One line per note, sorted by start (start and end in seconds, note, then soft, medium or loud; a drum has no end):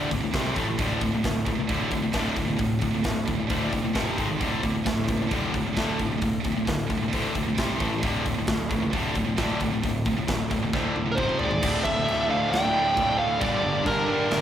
0.11 0.32 D1 medium
0.11 0.22 D2 medium
0.11 0.22 A2 medium
0.11 kick medium
0.11 open hi-hat medium
0.24 0.34 D2 medium
0.24 0.34 A2 medium
0.34 0.54 C2 medium
0.34 0.55 C3 medium
0.34 0.55 G3 medium
0.34 0.56 C4 loud
0.34 kick loud
0.34 snare loud
0.34 open hi-hat medium
0.55 0.77 A1 medium
0.55 0.66 A2 loud
0.55 0.66 E3 loud
0.55 0.67 A3 loud
0.55 kick medium
0.55 open hi-hat medium
0.69 0.80 A2 medium
0.69 0.80 E3 medium
0.79 0.99 D1 medium
0.79 1.01 D2 medium
0.79 1.02 A2 loud
0.79 1.02 D3 medium
0.79 kick loud
0.79 open hi-hat medium
1.01 1.22 D1 medium
1.01 1.14 D2 medium
1.01 1.13 A2 medium
1.01 kick medium
1.01 open hi-hat medium
1.15 1.24 D2 medium
1.15 1.24 A2 medium
1.24 1.45 D1 medium
1.24 1.45 D2 medium
1.24 1.45 A2 medium
1.24 kick loud
1.24 snare loud
1.24 open hi-hat medium
1.46 1.67 C#2 medium
1.46 1.59 D2 medium
1.46 1.58 A2 medium
1.46 kick medium
1.46 open hi-hat medium
1.55 1.66 D2 medium
1.55 1.67 A2 medium
1.60 1.69 D2 medium
1.60 1.69 A2 medium
1.69 1.90 D1 loud
1.69 1.91 D2 loud
1.69 1.92 A2 medium
1.69 1.92 D3 loud
1.69 kick loud
1.69 open hi-hat medium
1.91 2.13 D1 medium
1.91 2.02 D2 medium
1.91 2.02 A2 medium
1.91 kick medium
1.91 open hi-hat medium
2.03 2.13 D2 medium
2.03 2.13 A2 medium
2.13 2.35 D1 medium
2.13 2.36 D2 medium
2.13 2.36 A2 loud
2.13 2.36 D3 loud
2.13 kick loud
2.13 snare loud
2.13 open hi-hat medium
2.36 2.58 D1 medium
2.36 2.47 D2 medium
2.36 2.47 A2 medium
2.36 kick medium
2.36 open hi-hat medium
2.48 2.56 D2 medium
2.48 2.57 A2 medium
2.58 2.80 D1 loud
2.58 2.79 D2 medium
2.58 2.80 A2 medium
2.58 kick loud
2.58 open hi-hat medium
2.81 3.03 D1 medium
2.81 2.93 D2 medium
2.81 2.93 A2 medium
2.81 kick medium
2.81 open hi-hat medium
2.94 3.04 D2 medium
2.94 3.04 A2 medium
3.04 3.26 D1 medium
3.04 3.26 D2 medium
3.04 3.26 A2 medium
3.04 kick loud
3.04 snare loud
3.04 open hi-hat medium
3.27 3.48 D1 medium
3.27 3.38 D2 medium
3.27 3.38 A2 medium
3.27 kick medium
3.27 open hi-hat medium
3.35 3.46 D2 medium
3.35 3.47 A2 medium
3.40 3.49 D2 medium
3.40 3.49 A2 medium
3.50 3.71 D2 loud
3.50 3.72 D2 medium
3.50 3.72 A2 loud
3.50 3.72 D3 loud
3.50 kick loud
3.50 open hi-hat medium
3.72 3.95 E1 medium
3.72 3.83 D2 medium
3.72 3.84 A2 medium
3.72 kick medium
3.72 open hi-hat medium
3.85 3.94 D2 medium
3.85 3.96 A2 medium
3.95 4.16 F1 medium
3.95 4.17 F2 medium
3.95 4.18 C3 medium
3.95 4.18 F3 loud
3.95 kick loud
3.95 snare loud
3.95 open hi-hat medium
4.18 4.39 G#1 medium
4.18 4.28 G#2 medium
4.18 4.28 D#3 loud
4.18 4.29 G#3 loud
4.18 kick medium
4.18 open hi-hat medium
4.29 4.39 G#2 medium
4.29 4.40 D#3 medium
4.40 4.62 D1 medium
4.40 4.62 D2 medium
4.40 4.62 A2 medium
4.40 4.63 D3 loud
4.40 kick loud
4.40 open hi-hat medium
4.63 4.84 D1 medium
4.63 4.74 D2 medium
4.63 4.73 A2 medium
4.63 kick medium
4.63 open hi-hat medium
4.70 4.83 D2 medium
4.70 4.83 A2 medium
4.75 4.84 D2 medium
4.75 4.84 A2 medium
4.85 5.07 D1 medium
4.85 5.06 D2 medium
4.85 5.07 A2 medium
4.85 kick loud
4.85 snare loud
4.85 open hi-hat medium
5.04 5.16 A2 medium
5.08 5.29 C#2 medium
5.08 5.20 D2 medium
5.08 5.20 A2 medium
5.08 kick medium
5.08 open hi-hat medium
5.17 5.26 D2 medium
5.17 5.27 A2 medium
5.22 5.30 D2 medium
5.22 5.32 A2 medium
5.27 5.49 D2 medium
5.27 5.50 A2 medium
5.27 5.51 D3 loud
5.27 open hi-hat medium
5.31 5.52 D1 loud
5.31 5.53 D2 medium
5.31 5.53 A2 medium
5.31 5.54 D3 loud
5.31 kick loud
5.54 5.75 D1 medium
5.54 5.66 D2 medium
5.54 5.65 A2 medium
5.54 kick medium
5.54 open hi-hat medium
5.62 5.72 D2 medium
5.62 5.73 A2 medium
5.66 5.77 D2 medium
5.66 5.76 A2 medium
5.73 5.95 D2 medium
5.73 5.97 D3 medium
5.73 open hi-hat medium
5.77 5.97 D1 medium
5.77 5.99 D2 medium
5.77 5.99 A2 loud
5.77 5.99 D3 loud
5.77 kick loud
5.77 snare loud
5.96 6.05 D2 medium
5.96 6.05 A2 medium
5.96 kick medium
5.96 open hi-hat medium
6.00 6.20 D1 medium
6.00 6.10 D2 medium
6.00 6.10 A2 medium
6.06 6.16 D2 medium
6.06 6.17 A2 medium
6.11 6.21 D2 medium
6.11 6.22 A2 medium
6.18 6.40 D2 medium
6.18 6.39 A2 medium
6.18 open hi-hat medium
6.22 6.42 D1 medium
6.22 6.43 D2 medium
6.22 6.43 A2 medium
6.22 kick loud
6.40 6.51 D2 medium
6.40 6.51 A2 medium
6.44 6.65 D1 medium
6.44 6.56 D2 medium
6.44 6.55 A2 medium
6.44 kick medium
6.44 open hi-hat medium
6.52 6.64 D2 medium
6.52 6.64 A2 medium
6.57 6.67 D2 medium
6.57 6.67 A2 medium
6.67 6.88 D1 medium
6.67 6.88 D2 medium
6.67 6.88 A2 medium
6.67 kick loud
6.67 snare loud
6.67 open hi-hat medium
6.90 7.10 D1 medium
6.90 7.02 D2 medium
6.90 7.01 A2 medium
6.90 kick medium
6.90 open hi-hat medium
6.97 7.07 D2 medium
6.97 7.07 A2 medium
7.03 7.13 D2 medium
7.03 7.13 A2 medium
7.08 7.31 D2 medium
7.08 7.30 A2 medium
7.08 7.32 D3 medium
7.13 7.33 D2 medium
7.13 7.35 D2 medium
7.13 7.35 A2 loud
7.13 7.35 D3 medium
7.13 kick loud
7.13 open hi-hat medium
7.31 7.43 D2 medium
7.31 7.42 A2 medium
7.31 open hi-hat medium
7.35 7.56 D1 medium
7.35 7.47 D2 medium
7.35 7.47 A2 medium
7.35 kick medium
7.43 7.54 D2 medium
7.43 7.54 A2 medium
7.48 7.58 D2 medium
7.48 7.59 A2 medium
7.54 7.78 C2 medium
7.54 7.76 C3 medium
7.54 7.77 G3 medium
7.54 7.78 C4 loud
7.54 kick loud
7.54 open hi-hat medium
7.58 7.80 C3 medium
7.58 7.80 G3 medium
7.58 7.80 C4 loud
7.58 snare loud
7.76 8.01 A1 medium
7.76 7.89 A2 medium
7.76 7.89 E3 medium
7.76 kick medium
7.76 open hi-hat medium
7.81 7.91 A2 loud
7.81 7.91 E3 loud
7.81 7.91 A3 loud
7.92 8.03 A2 medium
7.92 8.03 E3 medium
7.98 8.22 D2 medium
7.98 8.21 A2 medium
7.98 8.23 D3 loud
8.03 8.23 D1 medium
8.03 8.24 D2 medium
8.03 8.25 A2 medium
8.03 8.25 D3 medium
8.03 kick loud
8.03 open hi-hat medium
8.26 8.46 D1 medium
8.26 8.37 D2 medium
8.26 8.37 A2 medium
8.26 kick medium
8.26 open hi-hat medium
8.34 8.48 D2 medium
8.34 8.44 A2 medium
8.38 8.48 A2 medium
8.47 8.69 D1 medium
8.47 8.69 D2 medium
8.47 8.69 A2 medium
8.47 kick loud
8.47 snare loud
8.47 open hi-hat medium
8.71 8.91 C#2 medium
8.71 8.82 D2 medium
8.71 8.81 A2 medium
8.71 kick loud
8.71 open hi-hat medium
8.82 8.92 D2 medium
8.82 8.93 A2 medium
8.93 9.13 D1 medium
8.93 9.15 D2 medium
8.93 9.15 A2 loud
8.93 9.15 D3 loud
8.93 kick loud
8.93 open hi-hat medium
9.15 9.36 D1 medium
9.15 9.26 D2 medium
9.15 9.26 A2 medium
9.15 kick medium
9.15 open hi-hat medium
9.27 9.36 D2 medium
9.27 9.37 A2 medium
9.37 9.59 D1 medium
9.37 9.59 D2 medium
9.37 9.60 A2 medium
9.37 9.60 D3 loud
9.37 kick loud
9.37 snare loud
9.37 open hi-hat medium
9.60 9.81 D1 medium
9.60 9.73 D2 medium
9.60 9.72 A2 medium
9.60 kick medium
9.60 open hi-hat medium
9.73 9.84 D2 medium
9.73 9.84 A2 medium
9.83 10.04 D1 medium
9.83 10.05 D2 medium
9.83 10.05 A2 medium
9.83 kick loud
9.83 open hi-hat medium
10.05 10.26 D1 medium
10.05 10.16 D2 medium
10.05 10.16 A2 medium
10.05 kick medium
10.05 open hi-hat medium
10.17 10.26 D2 medium
10.17 10.27 A2 medium
10.27 10.49 D1 medium
10.27 10.48 D2 medium
10.27 10.48 A2 medium
10.27 kick loud
10.27 snare loud
10.27 open hi-hat medium
10.51 10.71 D1 medium
10.51 10.62 D2 medium
10.51 10.61 A2 medium
10.51 kick medium
10.51 open hi-hat medium
10.63 10.72 D2 medium
10.63 10.74 A2 medium
10.73 10.95 D2 medium
10.73 10.94 D2 loud
10.73 10.95 A2 loud
10.73 10.95 D3 loud
10.73 kick loud
10.73 snare medium
10.96 11.16 D1 medium
10.96 11.07 D2 medium
10.96 11.06 A2 medium
10.96 high tom medium
11.07 11.18 D2 medium
11.07 11.18 A2 medium
11.12 11.19 D4 medium
11.12 11.18 A#4 medium
11.12 11.39 C5 medium
11.17 11.38 F1 medium
11.17 11.39 F2 medium
11.17 11.40 C3 medium
11.17 11.40 F3 loud
11.17 11.39 F4 medium
11.17 kick loud
11.17 mid tom medium
11.29 mid tom medium
11.37 11.50 G#2 loud
11.37 11.80 G#4 medium
11.37 11.84 D5 medium
11.37 floor tom medium
11.41 11.61 G#1 medium
11.41 11.50 D#3 loud
11.41 11.51 G#3 loud
11.51 11.62 G#2 medium
11.51 11.63 D#3 medium
11.51 floor tom medium
11.63 11.83 D1 loud
11.63 11.70 D2 medium
11.63 11.71 A2 medium
11.63 12.08 D3 loud
11.63 11.84 D3 loud
11.63 13.39 F3 medium
11.63 13.40 A3 medium
11.63 14.41 D4 medium
11.63 13.40 A4 medium
11.63 kick loud
11.63 crash loud
11.63 china medium
11.71 11.78 D2 medium
11.71 11.78 A2 medium
11.78 11.85 D2 medium
11.78 11.87 A2 medium
11.78 12.25 A4 medium
11.84 12.05 D1 medium
11.84 11.93 D2 medium
11.84 11.95 A2 medium
11.84 12.26 E5 loud
11.84 kick loud
11.93 12.01 D2 medium
11.93 12.01 A2 medium
12.01 12.09 D2 medium
12.01 12.09 A2 medium
12.06 12.27 D1 medium
12.06 12.27 D2 medium
12.06 12.17 A2 medium
12.06 12.32 D3 loud
12.06 china medium
12.10 12.17 D2 medium
12.18 12.25 D2 medium
12.18 12.25 A2 medium
12.26 12.33 D2 medium
12.26 12.49 D2 medium
12.26 12.32 A2 medium
12.26 12.50 D3 medium
12.26 12.49 A4 medium
12.30 12.41 D2 medium
12.30 12.40 A2 medium
12.30 12.52 D3 medium
12.30 12.51 F5 medium
12.41 12.47 D2 medium
12.41 12.48 A2 medium
12.48 12.72 D1 medium
12.48 12.56 D2 medium
12.48 12.56 A2 medium
12.48 13.14 D5 medium
12.52 12.95 D2 medium
12.52 12.97 D3 loud
12.52 13.18 G5 loud
12.52 snare loud
12.52 china medium
12.56 12.63 D2 medium
12.56 12.64 A2 medium
12.63 12.71 D2 medium
12.63 12.72 A2 medium
12.71 12.94 D1 medium
12.71 12.78 D2 medium
12.71 12.79 A2 medium
12.71 12.95 D3 loud
12.79 12.86 D2 medium
12.79 12.87 A2 medium
12.87 12.94 D2 medium
12.87 12.95 A2 medium
12.95 13.36 D1 medium
12.95 13.02 D2 medium
12.95 13.02 A2 medium
12.95 13.18 D3 medium
12.95 kick medium
12.95 china medium
13.02 13.09 D2 medium
13.02 13.10 A2 medium
13.09 13.17 D2 medium
13.09 13.18 A2 medium
13.18 13.25 D2 medium
13.18 13.26 A2 medium
13.18 13.40 D3 medium
13.18 13.39 A4 medium
13.18 13.42 F5 loud
13.26 13.33 D2 medium
13.26 13.33 A2 medium
13.34 13.42 D2 medium
13.34 13.41 A2 medium
13.40 13.61 G1 medium
13.40 13.50 G2 medium
13.40 13.50 D3 loud
13.40 13.61 G3 loud
13.40 13.86 G3 loud
13.40 13.82 G4 medium
13.40 13.82 D5 loud
13.40 kick loud
13.40 china medium
13.44 14.41 G3 medium
13.44 14.41 A#3 medium
13.44 14.41 A#4 medium
13.50 13.57 G2 medium
13.50 13.58 D3 medium
13.58 13.65 G2 medium
13.58 13.65 D3 medium
13.64 13.83 G1 medium
13.64 13.73 G2 medium
13.64 13.73 D3 medium
13.73 13.80 G2 medium
13.73 13.81 D3 medium
13.80 13.88 G2 medium
13.80 13.89 D3 medium
13.85 14.05 G1 medium
13.85 14.09 G3 loud
13.85 14.41 D4 medium
13.85 14.41 A#4 medium
13.85 kick loud
13.85 china medium
13.89 13.95 G2 medium
13.89 13.97 D3 medium
13.95 14.03 G2 medium
13.95 14.03 D3 medium
14.03 14.11 G2 medium
14.03 14.11 D3 medium
14.03 14.28 G3 loud
14.08 14.28 G2 medium
14.08 14.19 G2 medium
14.08 14.19 D3 medium
14.08 14.31 G3 loud
14.19 14.26 G2 medium
14.19 14.27 D3 medium
14.26 14.34 G2 medium
14.26 14.34 D3 medium
14.30 14.41 G1 loud
14.30 14.41 D3 medium
14.30 14.41 G3 loud
14.30 snare loud
14.30 china medium
14.35 14.41 G2 medium